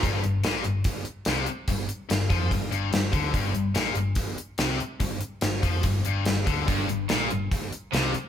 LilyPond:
<<
  \new Staff \with { instrumentName = "Distorted electric guitar" } { \clef bass \time 4/4 \key c \major \tempo 4 = 144 g,8 g,8 bes,8 g,8 r4 c8 r8 | g,8 r8 g,8 f8 g,8 g,8 g,8 d8 | g,8 g,8 bes,8 g,8 r4 c8 r8 | g,8 r8 g,8 f8 g,8 g,8 g,8 d8 |
g,8 g,8 bes,8 g,8 r4 c8 r8 | }
  \new Staff \with { instrumentName = "Overdriven electric guitar" } { \clef bass \time 4/4 \key c \major r1 | r1 | r1 | r1 |
g,8 g,8 bes,8 g,8 r4 c8 r8 | }
  \new Staff \with { instrumentName = "Picked electric bass" } { \clef bass \time 4/4 \key c \major g,,8 g,,8 bes,,8 g,,8 r4 c,8 r8 | g,,8 r8 g,,8 f,8 g,,8 g,,8 g,,8 d,8 | g,,8 g,,8 bes,,8 g,,8 r4 c,8 r8 | g,,8 r8 g,,8 f,8 g,,8 g,,8 g,,8 d,8 |
g,,8 g,,8 bes,,8 g,,8 r4 c,8 r8 | }
  \new DrumStaff \with { instrumentName = "Drums" } \drummode { \time 4/4 <hh bd>8 hh8 <hh sn>8 hh8 <hh bd>8 hh8 <hh sn>8 hh8 | <hh bd>8 hh8 <hh sn>8 <hh bd>8 <hh bd>8 hh8 <hh sn>8 <hh bd>8 | <hh bd>8 hh8 <hh sn>8 hh8 <hh bd>8 hh8 <hh sn>8 hh8 | <hh bd>8 hh8 <hh sn>8 <hh bd>8 <hh bd>8 hh8 <hh sn>8 <hh bd>8 |
<hh bd>8 hh8 <hh sn>8 hh8 <hh bd>8 hh8 <hh sn>8 hh8 | }
>>